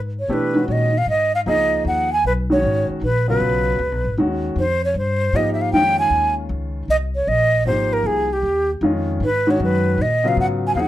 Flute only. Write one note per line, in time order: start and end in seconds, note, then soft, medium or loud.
0.20 0.35 C#5 medium
0.33 0.67 B4 medium
0.69 0.73 C#5 medium
0.69 0.99 D#5 medium
0.98 1.09 F5 medium
1.09 1.33 D#5 medium
1.35 1.41 F5 medium
1.48 1.84 D#5 medium
1.88 2.11 F#5 medium
2.13 2.24 G#5 medium
2.27 2.33 B4 loud
2.52 2.87 C#5 medium
3.04 3.27 B4 medium
3.29 4.15 B4 medium
4.59 4.82 C5 medium
4.85 4.96 C#5 medium
4.98 5.38 C5 medium
5.36 5.53 D#5 medium
5.54 5.63 E5 medium
5.61 5.72 F5 medium
5.73 5.97 G5 loud
5.99 6.35 G#5 medium
6.90 6.96 D#5 loud
7.15 7.30 C#5 medium
7.28 7.66 D#5 loud
7.67 7.95 C5 medium
7.93 8.08 A#4 medium
8.06 8.34 G#4 medium
8.33 8.71 G4 medium
9.24 9.52 B4 medium
9.51 9.62 C#5 medium
9.64 10.03 B4 medium
10.02 10.29 D#5 medium
10.28 10.39 F5 medium
10.40 10.46 F#5 loud
10.67 10.73 G#5 medium
10.75 10.81 F5 medium
10.80 10.88 F#5 loud